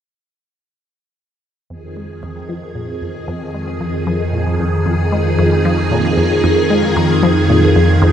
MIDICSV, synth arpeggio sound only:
0, 0, Header, 1, 2, 480
1, 0, Start_track
1, 0, Key_signature, -4, "minor"
1, 0, Tempo, 526316
1, 1553, Time_signature, 4, 2, 24, 8
1, 7408, End_track
2, 0, Start_track
2, 0, Title_t, "Synth arpeggio sound"
2, 0, Program_c, 0, 84
2, 1553, Note_on_c, 0, 41, 94
2, 1715, Note_off_c, 0, 41, 0
2, 1793, Note_on_c, 0, 56, 69
2, 1955, Note_off_c, 0, 56, 0
2, 2034, Note_on_c, 0, 41, 89
2, 2195, Note_off_c, 0, 41, 0
2, 2272, Note_on_c, 0, 53, 90
2, 2434, Note_off_c, 0, 53, 0
2, 2512, Note_on_c, 0, 46, 73
2, 2674, Note_off_c, 0, 46, 0
2, 2752, Note_on_c, 0, 41, 71
2, 2914, Note_off_c, 0, 41, 0
2, 2991, Note_on_c, 0, 41, 92
2, 3154, Note_off_c, 0, 41, 0
2, 3232, Note_on_c, 0, 56, 71
2, 3394, Note_off_c, 0, 56, 0
2, 3471, Note_on_c, 0, 41, 97
2, 3634, Note_off_c, 0, 41, 0
2, 3710, Note_on_c, 0, 53, 94
2, 3873, Note_off_c, 0, 53, 0
2, 3951, Note_on_c, 0, 46, 70
2, 4114, Note_off_c, 0, 46, 0
2, 4192, Note_on_c, 0, 41, 67
2, 4354, Note_off_c, 0, 41, 0
2, 4432, Note_on_c, 0, 41, 92
2, 4594, Note_off_c, 0, 41, 0
2, 4672, Note_on_c, 0, 56, 71
2, 4834, Note_off_c, 0, 56, 0
2, 4913, Note_on_c, 0, 41, 91
2, 5074, Note_off_c, 0, 41, 0
2, 5153, Note_on_c, 0, 53, 97
2, 5314, Note_off_c, 0, 53, 0
2, 5393, Note_on_c, 0, 46, 78
2, 5555, Note_off_c, 0, 46, 0
2, 5632, Note_on_c, 0, 41, 73
2, 5794, Note_off_c, 0, 41, 0
2, 5872, Note_on_c, 0, 41, 91
2, 6034, Note_off_c, 0, 41, 0
2, 6112, Note_on_c, 0, 56, 69
2, 6274, Note_off_c, 0, 56, 0
2, 6353, Note_on_c, 0, 41, 93
2, 6515, Note_off_c, 0, 41, 0
2, 6593, Note_on_c, 0, 53, 95
2, 6755, Note_off_c, 0, 53, 0
2, 6834, Note_on_c, 0, 46, 70
2, 6995, Note_off_c, 0, 46, 0
2, 7073, Note_on_c, 0, 41, 73
2, 7235, Note_off_c, 0, 41, 0
2, 7314, Note_on_c, 0, 41, 96
2, 7408, Note_off_c, 0, 41, 0
2, 7408, End_track
0, 0, End_of_file